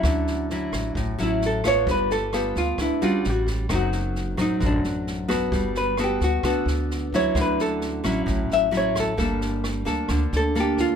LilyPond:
<<
  \new Staff \with { instrumentName = "Hollow-body jazz guitar" } { \time 4/4 \key d \major \tempo 4 = 131 r2 r8 e'8 a'8 cis''8 | b'8 a'8 g'8 f'8 e'8 f'8 fis'8 g'8 | fis'4. ees'8 d'2 | r8 b'8 g'8 fis'4 r4 cis''8 |
b'8 a'4 r4 e''8 cis''8 a'8~ | a'8 r2 a'8 g'8 f'8 | }
  \new Staff \with { instrumentName = "Nylon-string guitar" } { \time 4/4 \key d \major << { <fis cis' e'>4 <fis cis' e'>4. <fis cis' e'>4 <b f' a'>8~ | <b f' a'>4 <b f' a'>4 r8 <g cis' fis'>4. | <fis c' ees'>4. <fis c'>2 <b fis' a'>8~ | <b fis' a'>4 <b fis' a'>4 <b fis' a'>4. <fis cis' e'>8~ |
<fis cis' e'>4. <fis cis' e'>4. <fis cis' e'>4 | <bes d' a'>4. <bes d' a'>4. <bes d' a'>4 | } \\ { d2 a,2 | g2 d4 r4 | fis,2 fis,2 | g2 d2 |
d2 a,2 | g2 d2 | } >> }
  \new Staff \with { instrumentName = "Upright bass" } { \clef bass \time 4/4 \key d \major d,4. a,,8 a,,8 a,,4. | g,,4. d,8 d,8 g,,8 a,,4 | fis,,4. a,,8 a,,8 a,,4. | g,,4. d,8 d,8 d,4. |
d,4. a,,8 a,,8 a,,4. | g,,4. d,8 d,8 d,4. | }
  \new DrumStaff \with { instrumentName = "Drums" } \drummode { \time 4/4 <bd ss sn>8 sn8 sn8 <bd ss sn>8 <bd sn>8 sn8 sn8 <bd ss sn>8 | <bd sn>8 sn8 <ss sn>8 <bd sn>8 <bd ss sn>8 sn8 sn8 <bd sn>8 | <bd ss sn>8 sn8 sn8 <bd ss sn>8 <bd sn>8 sn8 sn8 <bd ss sn>8 | <bd sn>8 sn8 <ss sn>8 <bd sn>8 <bd ss sn>8 sn8 sn8 <bd sn>8 |
<bd ss sn>8 sn8 sn8 <bd ss sn>8 <bd sn>8 sn8 sn8 <bd ss sn>8 | <bd sn>8 sn8 <ss sn>8 <bd sn>8 <bd ss sn>8 sn8 sn8 <bd sn>8 | }
>>